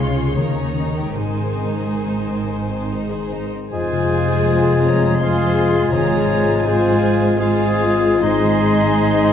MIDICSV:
0, 0, Header, 1, 13, 480
1, 0, Start_track
1, 0, Key_signature, -4, "major"
1, 0, Tempo, 814111
1, 696, Time_signature, 3, 2, 24, 8
1, 696, Tempo, 874636
1, 1176, Tempo, 835655
1, 2136, Key_signature, -4, "minor"
1, 2136, Tempo, 734394
1, 4536, Tempo, 815217
1, 5016, Tempo, 753769
1, 5726, End_track
2, 0, Start_track
2, 0, Title_t, "Violin section"
2, 0, Program_c, 0, 48
2, 0, Note_on_c, 0, 84, 57
2, 213, Note_off_c, 0, 84, 0
2, 215, Note_on_c, 0, 82, 47
2, 699, Note_off_c, 0, 82, 0
2, 699, Note_on_c, 0, 80, 45
2, 1644, Note_off_c, 0, 80, 0
2, 2143, Note_on_c, 0, 80, 69
2, 2845, Note_off_c, 0, 80, 0
2, 2864, Note_on_c, 0, 82, 65
2, 3088, Note_on_c, 0, 84, 70
2, 3100, Note_off_c, 0, 82, 0
2, 3567, Note_on_c, 0, 82, 73
2, 3572, Note_off_c, 0, 84, 0
2, 4041, Note_off_c, 0, 82, 0
2, 4042, Note_on_c, 0, 80, 71
2, 4525, Note_on_c, 0, 77, 66
2, 4528, Note_off_c, 0, 80, 0
2, 5011, Note_off_c, 0, 77, 0
2, 5014, Note_on_c, 0, 84, 80
2, 5720, Note_off_c, 0, 84, 0
2, 5726, End_track
3, 0, Start_track
3, 0, Title_t, "Flute"
3, 0, Program_c, 1, 73
3, 2133, Note_on_c, 1, 72, 59
3, 2840, Note_off_c, 1, 72, 0
3, 2865, Note_on_c, 1, 73, 51
3, 3093, Note_off_c, 1, 73, 0
3, 3097, Note_on_c, 1, 77, 59
3, 3568, Note_on_c, 1, 73, 59
3, 3577, Note_off_c, 1, 77, 0
3, 4050, Note_on_c, 1, 72, 63
3, 4060, Note_off_c, 1, 73, 0
3, 4521, Note_on_c, 1, 68, 61
3, 4531, Note_off_c, 1, 72, 0
3, 5009, Note_off_c, 1, 68, 0
3, 5013, Note_on_c, 1, 75, 70
3, 5726, Note_off_c, 1, 75, 0
3, 5726, End_track
4, 0, Start_track
4, 0, Title_t, "Oboe"
4, 0, Program_c, 2, 68
4, 2133, Note_on_c, 2, 68, 49
4, 3078, Note_off_c, 2, 68, 0
4, 3104, Note_on_c, 2, 68, 48
4, 3571, Note_off_c, 2, 68, 0
4, 3579, Note_on_c, 2, 68, 52
4, 4048, Note_off_c, 2, 68, 0
4, 4062, Note_on_c, 2, 68, 50
4, 4527, Note_off_c, 2, 68, 0
4, 4531, Note_on_c, 2, 68, 53
4, 5004, Note_off_c, 2, 68, 0
4, 5016, Note_on_c, 2, 68, 59
4, 5726, Note_off_c, 2, 68, 0
4, 5726, End_track
5, 0, Start_track
5, 0, Title_t, "Violin section"
5, 0, Program_c, 3, 48
5, 0, Note_on_c, 3, 65, 36
5, 0, Note_on_c, 3, 73, 44
5, 97, Note_off_c, 3, 65, 0
5, 105, Note_on_c, 3, 68, 35
5, 215, Note_off_c, 3, 68, 0
5, 219, Note_on_c, 3, 58, 37
5, 323, Note_off_c, 3, 58, 0
5, 336, Note_on_c, 3, 61, 33
5, 451, Note_off_c, 3, 61, 0
5, 460, Note_on_c, 3, 63, 36
5, 570, Note_on_c, 3, 67, 33
5, 576, Note_off_c, 3, 63, 0
5, 697, Note_off_c, 3, 67, 0
5, 699, Note_on_c, 3, 56, 35
5, 699, Note_on_c, 3, 72, 37
5, 702, Note_off_c, 3, 73, 0
5, 810, Note_off_c, 3, 56, 0
5, 824, Note_on_c, 3, 60, 31
5, 941, Note_off_c, 3, 60, 0
5, 942, Note_on_c, 3, 63, 32
5, 1055, Note_on_c, 3, 68, 29
5, 1060, Note_off_c, 3, 63, 0
5, 1175, Note_off_c, 3, 68, 0
5, 1179, Note_on_c, 3, 63, 32
5, 1300, Note_off_c, 3, 63, 0
5, 1304, Note_on_c, 3, 60, 28
5, 1423, Note_off_c, 3, 60, 0
5, 1428, Note_on_c, 3, 56, 32
5, 1545, Note_off_c, 3, 56, 0
5, 1547, Note_on_c, 3, 60, 31
5, 1665, Note_off_c, 3, 60, 0
5, 1677, Note_on_c, 3, 63, 33
5, 1789, Note_on_c, 3, 68, 29
5, 1791, Note_off_c, 3, 63, 0
5, 1909, Note_off_c, 3, 68, 0
5, 1913, Note_on_c, 3, 63, 32
5, 1994, Note_off_c, 3, 72, 0
5, 2028, Note_off_c, 3, 63, 0
5, 2035, Note_on_c, 3, 60, 31
5, 2142, Note_off_c, 3, 60, 0
5, 2148, Note_on_c, 3, 72, 49
5, 2149, Note_on_c, 3, 68, 50
5, 3086, Note_off_c, 3, 72, 0
5, 3087, Note_off_c, 3, 68, 0
5, 3113, Note_on_c, 3, 68, 50
5, 3114, Note_on_c, 3, 72, 50
5, 3575, Note_off_c, 3, 68, 0
5, 3576, Note_off_c, 3, 72, 0
5, 3583, Note_on_c, 3, 68, 49
5, 3584, Note_on_c, 3, 72, 46
5, 4046, Note_off_c, 3, 72, 0
5, 4047, Note_off_c, 3, 68, 0
5, 4054, Note_on_c, 3, 72, 52
5, 4055, Note_on_c, 3, 68, 53
5, 4525, Note_off_c, 3, 68, 0
5, 4525, Note_off_c, 3, 72, 0
5, 4534, Note_on_c, 3, 68, 53
5, 4536, Note_on_c, 3, 72, 53
5, 5005, Note_off_c, 3, 68, 0
5, 5007, Note_off_c, 3, 72, 0
5, 5022, Note_on_c, 3, 68, 62
5, 5023, Note_on_c, 3, 72, 59
5, 5726, Note_off_c, 3, 68, 0
5, 5726, Note_off_c, 3, 72, 0
5, 5726, End_track
6, 0, Start_track
6, 0, Title_t, "Clarinet"
6, 0, Program_c, 4, 71
6, 2137, Note_on_c, 4, 65, 45
6, 3081, Note_off_c, 4, 65, 0
6, 3107, Note_on_c, 4, 65, 46
6, 3570, Note_off_c, 4, 65, 0
6, 3574, Note_on_c, 4, 65, 46
6, 4045, Note_off_c, 4, 65, 0
6, 4063, Note_on_c, 4, 65, 51
6, 4529, Note_off_c, 4, 65, 0
6, 4537, Note_on_c, 4, 65, 53
6, 5026, Note_on_c, 4, 63, 57
6, 5035, Note_off_c, 4, 65, 0
6, 5726, Note_off_c, 4, 63, 0
6, 5726, End_track
7, 0, Start_track
7, 0, Title_t, "Harp"
7, 0, Program_c, 5, 46
7, 0, Note_on_c, 5, 49, 44
7, 0, Note_on_c, 5, 65, 28
7, 0, Note_on_c, 5, 68, 32
7, 209, Note_on_c, 5, 51, 41
7, 229, Note_off_c, 5, 49, 0
7, 229, Note_off_c, 5, 65, 0
7, 230, Note_off_c, 5, 68, 0
7, 448, Note_on_c, 5, 61, 28
7, 451, Note_on_c, 5, 63, 30
7, 699, Note_on_c, 5, 44, 32
7, 716, Note_off_c, 5, 51, 0
7, 716, Note_off_c, 5, 61, 0
7, 942, Note_on_c, 5, 56, 28
7, 1181, Note_on_c, 5, 60, 28
7, 1417, Note_off_c, 5, 63, 0
7, 1424, Note_on_c, 5, 63, 28
7, 1666, Note_on_c, 5, 68, 30
7, 1899, Note_off_c, 5, 63, 0
7, 1906, Note_on_c, 5, 63, 28
7, 2138, Note_on_c, 5, 41, 43
7, 2155, Note_off_c, 5, 63, 0
7, 2157, Note_off_c, 5, 44, 0
7, 2261, Note_on_c, 5, 48, 35
7, 2377, Note_off_c, 5, 56, 0
7, 2384, Note_on_c, 5, 56, 40
7, 2495, Note_off_c, 5, 60, 0
7, 2503, Note_on_c, 5, 60, 37
7, 2741, Note_off_c, 5, 68, 0
7, 2867, Note_on_c, 5, 72, 38
7, 2984, Note_on_c, 5, 77, 44
7, 3102, Note_off_c, 5, 72, 0
7, 3109, Note_on_c, 5, 72, 44
7, 3229, Note_on_c, 5, 68, 39
7, 3349, Note_on_c, 5, 65, 40
7, 3458, Note_off_c, 5, 56, 0
7, 3466, Note_on_c, 5, 56, 37
7, 3583, Note_on_c, 5, 44, 46
7, 3601, Note_off_c, 5, 48, 0
7, 3602, Note_off_c, 5, 41, 0
7, 3701, Note_on_c, 5, 53, 39
7, 3811, Note_off_c, 5, 56, 0
7, 3819, Note_on_c, 5, 56, 40
7, 3934, Note_off_c, 5, 60, 0
7, 3942, Note_on_c, 5, 60, 38
7, 4052, Note_off_c, 5, 65, 0
7, 4059, Note_on_c, 5, 65, 45
7, 4170, Note_off_c, 5, 68, 0
7, 4178, Note_on_c, 5, 68, 40
7, 4290, Note_off_c, 5, 72, 0
7, 4298, Note_on_c, 5, 72, 46
7, 4408, Note_off_c, 5, 77, 0
7, 4416, Note_on_c, 5, 77, 44
7, 4528, Note_off_c, 5, 72, 0
7, 4535, Note_on_c, 5, 72, 45
7, 4645, Note_off_c, 5, 68, 0
7, 4652, Note_on_c, 5, 68, 43
7, 4762, Note_off_c, 5, 65, 0
7, 4769, Note_on_c, 5, 65, 44
7, 4889, Note_off_c, 5, 56, 0
7, 4897, Note_on_c, 5, 56, 43
7, 5013, Note_off_c, 5, 44, 0
7, 5020, Note_on_c, 5, 44, 53
7, 5036, Note_off_c, 5, 65, 0
7, 5037, Note_off_c, 5, 77, 0
7, 5038, Note_off_c, 5, 53, 0
7, 5148, Note_on_c, 5, 51, 42
7, 5262, Note_off_c, 5, 56, 0
7, 5270, Note_on_c, 5, 56, 45
7, 5394, Note_on_c, 5, 63, 44
7, 5500, Note_off_c, 5, 68, 0
7, 5508, Note_on_c, 5, 68, 47
7, 5613, Note_off_c, 5, 63, 0
7, 5620, Note_on_c, 5, 63, 44
7, 5726, Note_off_c, 5, 44, 0
7, 5726, Note_off_c, 5, 51, 0
7, 5726, Note_off_c, 5, 56, 0
7, 5726, Note_off_c, 5, 60, 0
7, 5726, Note_off_c, 5, 63, 0
7, 5726, Note_off_c, 5, 68, 0
7, 5726, Note_off_c, 5, 72, 0
7, 5726, End_track
8, 0, Start_track
8, 0, Title_t, "French horn section"
8, 0, Program_c, 6, 60
8, 2141, Note_on_c, 6, 65, 52
8, 2144, Note_on_c, 6, 56, 50
8, 3083, Note_off_c, 6, 65, 0
8, 3084, Note_off_c, 6, 56, 0
8, 3107, Note_on_c, 6, 56, 50
8, 3110, Note_on_c, 6, 65, 49
8, 3566, Note_off_c, 6, 56, 0
8, 3567, Note_off_c, 6, 65, 0
8, 4055, Note_on_c, 6, 56, 50
8, 4056, Note_on_c, 6, 65, 52
8, 4525, Note_off_c, 6, 56, 0
8, 4526, Note_off_c, 6, 65, 0
8, 4536, Note_on_c, 6, 65, 56
8, 4537, Note_on_c, 6, 56, 52
8, 5007, Note_off_c, 6, 56, 0
8, 5007, Note_off_c, 6, 65, 0
8, 5014, Note_on_c, 6, 63, 60
8, 5017, Note_on_c, 6, 56, 59
8, 5726, Note_off_c, 6, 56, 0
8, 5726, Note_off_c, 6, 63, 0
8, 5726, End_track
9, 0, Start_track
9, 0, Title_t, "Viola section"
9, 0, Program_c, 7, 48
9, 0, Note_on_c, 7, 56, 45
9, 0, Note_on_c, 7, 65, 42
9, 194, Note_off_c, 7, 56, 0
9, 213, Note_off_c, 7, 65, 0
9, 216, Note_on_c, 7, 63, 42
9, 218, Note_on_c, 7, 51, 41
9, 1996, Note_off_c, 7, 63, 0
9, 2020, Note_off_c, 7, 51, 0
9, 2132, Note_on_c, 7, 65, 43
9, 2136, Note_on_c, 7, 56, 46
9, 3078, Note_off_c, 7, 65, 0
9, 3080, Note_off_c, 7, 56, 0
9, 3104, Note_on_c, 7, 56, 48
9, 3105, Note_on_c, 7, 65, 49
9, 3564, Note_off_c, 7, 56, 0
9, 3568, Note_off_c, 7, 65, 0
9, 3572, Note_on_c, 7, 56, 47
9, 3576, Note_on_c, 7, 65, 46
9, 4044, Note_off_c, 7, 56, 0
9, 4046, Note_off_c, 7, 65, 0
9, 4051, Note_on_c, 7, 56, 51
9, 4053, Note_on_c, 7, 65, 52
9, 4523, Note_off_c, 7, 56, 0
9, 4524, Note_off_c, 7, 65, 0
9, 4534, Note_on_c, 7, 56, 53
9, 4534, Note_on_c, 7, 65, 54
9, 5005, Note_off_c, 7, 56, 0
9, 5005, Note_off_c, 7, 65, 0
9, 5013, Note_on_c, 7, 56, 51
9, 5014, Note_on_c, 7, 63, 57
9, 5726, Note_off_c, 7, 56, 0
9, 5726, Note_off_c, 7, 63, 0
9, 5726, End_track
10, 0, Start_track
10, 0, Title_t, "Bassoon"
10, 0, Program_c, 8, 70
10, 2138, Note_on_c, 8, 56, 52
10, 3081, Note_off_c, 8, 56, 0
10, 3103, Note_on_c, 8, 56, 51
10, 3571, Note_off_c, 8, 56, 0
10, 3582, Note_on_c, 8, 56, 51
10, 4049, Note_off_c, 8, 56, 0
10, 4059, Note_on_c, 8, 56, 49
10, 4527, Note_off_c, 8, 56, 0
10, 4542, Note_on_c, 8, 56, 55
10, 5010, Note_off_c, 8, 56, 0
10, 5019, Note_on_c, 8, 56, 59
10, 5726, Note_off_c, 8, 56, 0
10, 5726, End_track
11, 0, Start_track
11, 0, Title_t, "Cello section"
11, 0, Program_c, 10, 48
11, 0, Note_on_c, 10, 49, 42
11, 199, Note_off_c, 10, 49, 0
11, 209, Note_on_c, 10, 39, 37
11, 692, Note_on_c, 10, 44, 36
11, 696, Note_off_c, 10, 39, 0
11, 1991, Note_off_c, 10, 44, 0
11, 2131, Note_on_c, 10, 41, 48
11, 3553, Note_off_c, 10, 41, 0
11, 3575, Note_on_c, 10, 44, 55
11, 5726, Note_off_c, 10, 44, 0
11, 5726, End_track
12, 0, Start_track
12, 0, Title_t, "Timpani"
12, 0, Program_c, 11, 47
12, 3574, Note_on_c, 11, 44, 60
12, 4266, Note_off_c, 11, 44, 0
12, 5726, End_track
13, 0, Start_track
13, 0, Title_t, "Double bass section"
13, 0, Program_c, 12, 48
13, 0, Note_on_c, 12, 37, 46
13, 202, Note_off_c, 12, 37, 0
13, 213, Note_on_c, 12, 39, 41
13, 698, Note_off_c, 12, 39, 0
13, 700, Note_on_c, 12, 32, 39
13, 1995, Note_off_c, 12, 32, 0
13, 2137, Note_on_c, 12, 29, 47
13, 3556, Note_off_c, 12, 29, 0
13, 3574, Note_on_c, 12, 32, 52
13, 5726, Note_off_c, 12, 32, 0
13, 5726, End_track
0, 0, End_of_file